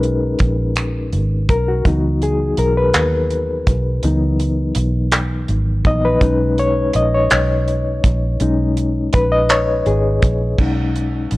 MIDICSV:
0, 0, Header, 1, 4, 480
1, 0, Start_track
1, 0, Tempo, 727273
1, 1222, Time_signature, 6, 3, 24, 8
1, 7505, End_track
2, 0, Start_track
2, 0, Title_t, "Reed electric piano"
2, 0, Program_c, 0, 4
2, 0, Control_c, 0, 64, 127
2, 0, Note_on_c, 0, 56, 49
2, 0, Note_on_c, 0, 61, 50
2, 0, Note_on_c, 0, 63, 61
2, 0, Note_on_c, 0, 66, 84
2, 0, Note_on_c, 0, 68, 83
2, 0, Note_on_c, 0, 70, 97
2, 0, Note_on_c, 0, 71, 85
2, 357, Note_off_c, 0, 71, 0
2, 476, Note_off_c, 0, 56, 0
2, 477, Note_off_c, 0, 61, 0
2, 479, Note_off_c, 0, 63, 0
2, 984, Note_off_c, 0, 70, 0
2, 984, Note_on_c, 0, 70, 81
2, 1107, Note_off_c, 0, 70, 0
2, 1108, Note_off_c, 0, 66, 0
2, 1108, Note_on_c, 0, 66, 71
2, 1226, Note_on_c, 0, 52, 51
2, 1229, Note_on_c, 0, 54, 46
2, 1230, Note_on_c, 0, 59, 44
2, 1232, Control_c, 0, 64, 0
2, 1234, Note_on_c, 0, 63, 54
2, 1237, Note_off_c, 0, 68, 0
2, 1337, Control_c, 0, 64, 127
2, 1470, Note_on_c, 0, 68, 78
2, 1476, Note_off_c, 0, 66, 0
2, 1690, Note_off_c, 0, 68, 0
2, 1708, Note_on_c, 0, 70, 82
2, 1828, Note_off_c, 0, 70, 0
2, 1829, Note_on_c, 0, 71, 89
2, 1918, Note_off_c, 0, 52, 0
2, 1919, Note_off_c, 0, 54, 0
2, 1920, Note_off_c, 0, 59, 0
2, 1921, Note_off_c, 0, 63, 0
2, 2519, Note_off_c, 0, 71, 0
2, 2666, Note_on_c, 0, 54, 47
2, 2667, Note_on_c, 0, 52, 48
2, 2671, Note_on_c, 0, 59, 48
2, 2673, Note_on_c, 0, 63, 56
2, 3358, Note_off_c, 0, 52, 0
2, 3358, Note_off_c, 0, 54, 0
2, 3360, Note_off_c, 0, 59, 0
2, 3361, Note_off_c, 0, 63, 0
2, 3866, Note_on_c, 0, 52, 51
2, 3869, Note_on_c, 0, 54, 44
2, 3871, Note_on_c, 0, 59, 42
2, 3872, Note_on_c, 0, 63, 50
2, 3874, Note_on_c, 0, 75, 97
2, 3992, Note_off_c, 0, 75, 0
2, 3993, Note_on_c, 0, 71, 81
2, 4080, Note_off_c, 0, 52, 0
2, 4082, Note_off_c, 0, 54, 0
2, 4083, Note_off_c, 0, 59, 0
2, 4084, Note_off_c, 0, 63, 0
2, 4100, Note_on_c, 0, 56, 58
2, 4103, Note_on_c, 0, 61, 50
2, 4108, Note_on_c, 0, 63, 56
2, 4111, Control_c, 0, 64, 0
2, 4208, Control_c, 0, 64, 127
2, 4353, Note_on_c, 0, 73, 92
2, 4358, Note_off_c, 0, 71, 0
2, 4420, Note_off_c, 0, 56, 0
2, 4422, Note_off_c, 0, 61, 0
2, 4425, Note_off_c, 0, 63, 0
2, 4593, Note_on_c, 0, 75, 89
2, 4595, Note_off_c, 0, 73, 0
2, 4711, Note_off_c, 0, 75, 0
2, 4715, Note_on_c, 0, 73, 79
2, 5402, Note_off_c, 0, 73, 0
2, 5550, Note_on_c, 0, 56, 54
2, 5554, Note_on_c, 0, 61, 49
2, 5558, Note_on_c, 0, 63, 61
2, 6029, Note_on_c, 0, 71, 95
2, 6149, Note_off_c, 0, 71, 0
2, 6150, Note_on_c, 0, 75, 101
2, 6240, Note_off_c, 0, 56, 0
2, 6242, Note_off_c, 0, 61, 0
2, 6244, Note_off_c, 0, 63, 0
2, 6267, Note_on_c, 0, 73, 90
2, 6270, Note_off_c, 0, 75, 0
2, 6488, Note_off_c, 0, 73, 0
2, 6511, Note_on_c, 0, 68, 71
2, 6730, Note_off_c, 0, 68, 0
2, 6991, Control_c, 0, 64, 0
2, 6992, Note_on_c, 0, 56, 46
2, 6996, Note_on_c, 0, 61, 45
2, 6999, Note_on_c, 0, 63, 53
2, 7093, Control_c, 0, 64, 127
2, 7505, Note_off_c, 0, 56, 0
2, 7505, Note_off_c, 0, 61, 0
2, 7505, Note_off_c, 0, 63, 0
2, 7505, End_track
3, 0, Start_track
3, 0, Title_t, "Fingered electric bass"
3, 0, Program_c, 1, 33
3, 0, Note_on_c, 1, 35, 111
3, 237, Note_off_c, 1, 35, 0
3, 270, Note_on_c, 1, 34, 84
3, 744, Note_on_c, 1, 32, 76
3, 754, Note_off_c, 1, 34, 0
3, 959, Note_off_c, 1, 32, 0
3, 982, Note_on_c, 1, 35, 77
3, 1198, Note_off_c, 1, 35, 0
3, 1223, Note_on_c, 1, 37, 107
3, 1676, Note_off_c, 1, 37, 0
3, 1702, Note_on_c, 1, 35, 77
3, 1918, Note_off_c, 1, 35, 0
3, 1943, Note_on_c, 1, 39, 79
3, 2396, Note_off_c, 1, 39, 0
3, 2422, Note_on_c, 1, 35, 78
3, 2638, Note_off_c, 1, 35, 0
3, 2665, Note_on_c, 1, 37, 107
3, 3117, Note_off_c, 1, 37, 0
3, 3142, Note_on_c, 1, 35, 84
3, 3596, Note_off_c, 1, 35, 0
3, 3623, Note_on_c, 1, 32, 94
3, 3839, Note_off_c, 1, 32, 0
3, 3863, Note_on_c, 1, 34, 79
3, 4079, Note_off_c, 1, 34, 0
3, 4102, Note_on_c, 1, 35, 104
3, 4556, Note_off_c, 1, 35, 0
3, 4588, Note_on_c, 1, 34, 80
3, 4801, Note_off_c, 1, 34, 0
3, 4829, Note_on_c, 1, 35, 79
3, 5279, Note_off_c, 1, 35, 0
3, 5308, Note_on_c, 1, 34, 94
3, 5521, Note_off_c, 1, 34, 0
3, 5550, Note_on_c, 1, 35, 106
3, 6000, Note_off_c, 1, 35, 0
3, 6033, Note_on_c, 1, 34, 90
3, 6481, Note_off_c, 1, 34, 0
3, 6510, Note_on_c, 1, 32, 91
3, 6722, Note_off_c, 1, 32, 0
3, 6750, Note_on_c, 1, 34, 87
3, 6962, Note_off_c, 1, 34, 0
3, 6989, Note_on_c, 1, 35, 91
3, 7439, Note_off_c, 1, 35, 0
3, 7473, Note_on_c, 1, 34, 71
3, 7505, Note_off_c, 1, 34, 0
3, 7505, End_track
4, 0, Start_track
4, 0, Title_t, "Drums"
4, 22, Note_on_c, 9, 42, 48
4, 88, Note_off_c, 9, 42, 0
4, 257, Note_on_c, 9, 42, 75
4, 266, Note_on_c, 9, 36, 91
4, 323, Note_off_c, 9, 42, 0
4, 332, Note_off_c, 9, 36, 0
4, 500, Note_on_c, 9, 42, 64
4, 507, Note_on_c, 9, 26, 114
4, 566, Note_off_c, 9, 42, 0
4, 573, Note_off_c, 9, 26, 0
4, 741, Note_on_c, 9, 42, 44
4, 807, Note_off_c, 9, 42, 0
4, 980, Note_on_c, 9, 42, 73
4, 981, Note_on_c, 9, 36, 100
4, 1046, Note_off_c, 9, 42, 0
4, 1047, Note_off_c, 9, 36, 0
4, 1220, Note_on_c, 9, 36, 86
4, 1220, Note_on_c, 9, 42, 61
4, 1286, Note_off_c, 9, 36, 0
4, 1286, Note_off_c, 9, 42, 0
4, 1463, Note_on_c, 9, 42, 54
4, 1529, Note_off_c, 9, 42, 0
4, 1698, Note_on_c, 9, 42, 72
4, 1764, Note_off_c, 9, 42, 0
4, 1937, Note_on_c, 9, 42, 65
4, 1944, Note_on_c, 9, 39, 106
4, 2003, Note_off_c, 9, 42, 0
4, 2010, Note_off_c, 9, 39, 0
4, 2180, Note_on_c, 9, 42, 44
4, 2246, Note_off_c, 9, 42, 0
4, 2419, Note_on_c, 9, 42, 69
4, 2421, Note_on_c, 9, 36, 93
4, 2485, Note_off_c, 9, 42, 0
4, 2487, Note_off_c, 9, 36, 0
4, 2658, Note_on_c, 9, 42, 63
4, 2724, Note_off_c, 9, 42, 0
4, 2902, Note_on_c, 9, 42, 55
4, 2968, Note_off_c, 9, 42, 0
4, 3134, Note_on_c, 9, 42, 82
4, 3200, Note_off_c, 9, 42, 0
4, 3377, Note_on_c, 9, 42, 67
4, 3385, Note_on_c, 9, 39, 108
4, 3443, Note_off_c, 9, 42, 0
4, 3451, Note_off_c, 9, 39, 0
4, 3620, Note_on_c, 9, 42, 44
4, 3686, Note_off_c, 9, 42, 0
4, 3861, Note_on_c, 9, 36, 102
4, 3861, Note_on_c, 9, 42, 76
4, 3927, Note_off_c, 9, 36, 0
4, 3927, Note_off_c, 9, 42, 0
4, 4100, Note_on_c, 9, 36, 94
4, 4100, Note_on_c, 9, 42, 61
4, 4166, Note_off_c, 9, 36, 0
4, 4166, Note_off_c, 9, 42, 0
4, 4344, Note_on_c, 9, 42, 48
4, 4410, Note_off_c, 9, 42, 0
4, 4577, Note_on_c, 9, 42, 72
4, 4643, Note_off_c, 9, 42, 0
4, 4820, Note_on_c, 9, 42, 69
4, 4827, Note_on_c, 9, 39, 106
4, 4886, Note_off_c, 9, 42, 0
4, 4893, Note_off_c, 9, 39, 0
4, 5066, Note_on_c, 9, 42, 45
4, 5132, Note_off_c, 9, 42, 0
4, 5305, Note_on_c, 9, 36, 101
4, 5306, Note_on_c, 9, 42, 78
4, 5371, Note_off_c, 9, 36, 0
4, 5372, Note_off_c, 9, 42, 0
4, 5544, Note_on_c, 9, 42, 64
4, 5610, Note_off_c, 9, 42, 0
4, 5788, Note_on_c, 9, 42, 54
4, 5854, Note_off_c, 9, 42, 0
4, 6024, Note_on_c, 9, 42, 76
4, 6032, Note_on_c, 9, 36, 97
4, 6090, Note_off_c, 9, 42, 0
4, 6098, Note_off_c, 9, 36, 0
4, 6265, Note_on_c, 9, 42, 73
4, 6272, Note_on_c, 9, 39, 115
4, 6331, Note_off_c, 9, 42, 0
4, 6338, Note_off_c, 9, 39, 0
4, 6506, Note_on_c, 9, 42, 44
4, 6572, Note_off_c, 9, 42, 0
4, 6746, Note_on_c, 9, 42, 77
4, 6748, Note_on_c, 9, 36, 95
4, 6812, Note_off_c, 9, 42, 0
4, 6814, Note_off_c, 9, 36, 0
4, 6986, Note_on_c, 9, 36, 85
4, 6987, Note_on_c, 9, 49, 66
4, 7052, Note_off_c, 9, 36, 0
4, 7053, Note_off_c, 9, 49, 0
4, 7233, Note_on_c, 9, 42, 47
4, 7299, Note_off_c, 9, 42, 0
4, 7465, Note_on_c, 9, 42, 72
4, 7505, Note_off_c, 9, 42, 0
4, 7505, End_track
0, 0, End_of_file